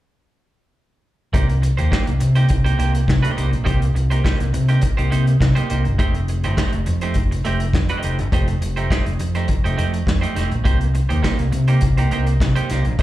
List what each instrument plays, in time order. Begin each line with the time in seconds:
1.33 fingered electric bass C2, clean electric guitar A#3 D#4 G4 C5, kick, closed hi-hat
1.49 muted clean electric guitar stroke, closed hi-hat
1.62 muted clean electric guitar stroke, closed hi-hat
1.77 fingered electric bass D#2, clean electric guitar A#3 D#4 G4 C5, closed hi-hat
1.91 clean electric guitar A#3 D#4 G4 C5, kick, snare, clap
2.07 fingered electric bass C2, muted clean electric guitar stroke, closed hi-hat
2.20 fingered electric bass C3, muted clean electric guitar stroke, closed hi-hat
2.35 clean electric guitar A#3 D#4 G4 C5, closed hi-hat
2.49 fingered electric bass C2, muted clean electric guitar stroke, kick, closed hi-hat
2.64 clean electric guitar A#3 D#4 G4 C5, closed hi-hat
2.78 fingered electric bass C2, clean electric guitar A#3 D#4 G4 C5, closed hi-hat
2.94 muted clean electric guitar stroke, closed hi-hat
3.07 fingered electric bass C3, muted clean electric guitar stroke, kick, snare, clap
3.22 clean electric guitar A#3 D#4 G4 C5, closed hi-hat
3.36 fingered electric bass C2, clean electric guitar A#3 D#4 G4 C5, closed hi-hat
3.51 fingered electric bass A#1, muted clean electric guitar stroke, closed hi-hat
3.64 fingered electric bass C2, clean electric guitar A#3 D#4 G4 C5, kick, closed hi-hat
3.81 muted clean electric guitar stroke, closed hi-hat
3.94 fingered electric bass C2, muted clean electric guitar stroke, closed hi-hat
4.10 clean electric guitar A#3 D#4 G4 C5, closed hi-hat
4.24 clean electric guitar A#3 D#4 G4 C5, kick, snare, clap
4.39 fingered electric bass C2, muted clean electric guitar stroke, closed hi-hat
4.53 fingered electric bass C3, muted clean electric guitar stroke, closed hi-hat
4.69 clean electric guitar A#3 D#4 G4 C5, closed hi-hat
4.81 muted clean electric guitar stroke, kick, closed hi-hat
4.97 fingered electric bass C2, clean electric guitar A#3 D#4 G4 C5, closed hi-hat
5.10 fingered electric bass C3, clean electric guitar A#3 D#4 G4 C5, closed hi-hat
5.26 muted clean electric guitar stroke, closed hi-hat
5.40 fingered electric bass C3, muted clean electric guitar stroke, kick, snare, clap
5.55 clean electric guitar A#3 D#4 G4 C5, closed hi-hat
5.69 fingered electric bass C2, clean electric guitar A#3 D#4 G4 C5, closed hi-hat
5.84 fingered electric bass G1, muted clean electric guitar stroke, closed hi-hat
5.99 fingered electric bass F1, clean electric guitar A3 D#4 G4 C5, kick, closed hi-hat
6.14 muted clean electric guitar stroke, closed hi-hat
6.28 muted clean electric guitar stroke, closed hi-hat
6.44 fingered electric bass G1, clean electric guitar A3 D#4 G4 C5, closed hi-hat
6.57 clean electric guitar A3 D#4 G4 C5, kick, snare, clap
6.73 fingered electric bass F1, muted clean electric guitar stroke, closed hi-hat
6.86 fingered electric bass F2, muted clean electric guitar stroke, closed hi-hat
7.01 clean electric guitar A3 D#4 G4 C5, closed hi-hat
7.14 fingered electric bass F1, kick, closed hi-hat
7.31 muted clean electric guitar stroke, closed hi-hat
7.45 fingered electric bass F1, clean electric guitar A3 D#4 G4 C5, closed hi-hat
7.60 muted clean electric guitar stroke, closed hi-hat
7.73 fingered electric bass F2, muted clean electric guitar stroke, kick, snare, clap
7.89 clean electric guitar A3 D#4 G4 C5, closed hi-hat
8.03 fingered electric bass F1, clean electric guitar A3 D#4 G4 C5, closed hi-hat
8.19 fingered electric bass G1, muted clean electric guitar stroke, closed hi-hat
8.32 fingered electric bass F1, clean electric guitar A3 D#4 G4 C5, kick, closed hi-hat
8.48 muted clean electric guitar stroke, closed hi-hat
8.61 fingered electric bass F1, muted clean electric guitar stroke, closed hi-hat
8.76 clean electric guitar A3 D#4 G4 C5, closed hi-hat
8.90 clean electric guitar A3 D#4 G4 C5, kick, snare, clap
9.06 fingered electric bass F1, muted clean electric guitar stroke, closed hi-hat
9.19 fingered electric bass F2, muted clean electric guitar stroke, closed hi-hat
9.35 clean electric guitar A3 D#4 G4 C5, closed hi-hat
9.48 muted clean electric guitar stroke, kick, closed hi-hat
9.64 fingered electric bass F1, clean electric guitar A3 D#4 G4 C5, closed hi-hat
9.77 fingered electric bass F2, clean electric guitar A3 D#4 G4 C5, closed hi-hat
9.93 muted clean electric guitar stroke, closed hi-hat
10.06 fingered electric bass F2, muted clean electric guitar stroke, kick, snare, clap
10.21 clean electric guitar A3 D#4 G4 C5, closed hi-hat
10.35 fingered electric bass F1, clean electric guitar A3 D#4 G4 C5, snare, closed hi-hat
10.51 fingered electric bass A#1, muted clean electric guitar stroke, closed hi-hat
10.64 fingered electric bass C2, clean electric guitar A#3 D#4 G4 C5, kick, closed hi-hat
10.80 muted clean electric guitar stroke, closed hi-hat
10.94 muted clean electric guitar stroke, closed hi-hat
11.09 fingered electric bass D#2, clean electric guitar A#3 D#4 G4 C5, closed hi-hat
11.22 clean electric guitar A#3 D#4 G4 C5, kick, snare, clap
11.38 fingered electric bass C2, muted clean electric guitar stroke, closed hi-hat
11.52 fingered electric bass C3, muted clean electric guitar stroke, closed hi-hat
11.68 clean electric guitar A#3 D#4 G4 C5, closed hi-hat
11.81 fingered electric bass C2, muted clean electric guitar stroke, kick, closed hi-hat
11.97 clean electric guitar A#3 D#4 G4 C5, closed hi-hat
12.11 fingered electric bass C2, clean electric guitar A#3 D#4 G4 C5, closed hi-hat
12.27 muted clean electric guitar stroke, closed hi-hat
12.40 fingered electric bass C3, muted clean electric guitar stroke, kick, snare, clap
12.55 clean electric guitar A#3 D#4 G4 C5, closed hi-hat
12.70 fingered electric bass C2, clean electric guitar A#3 D#4 G4 C5, snare, closed hi-hat
12.85 fingered electric bass A#1, muted clean electric guitar stroke, closed hi-hat
12.99 fingered electric bass C2, clean electric guitar A#3, kick, closed hi-hat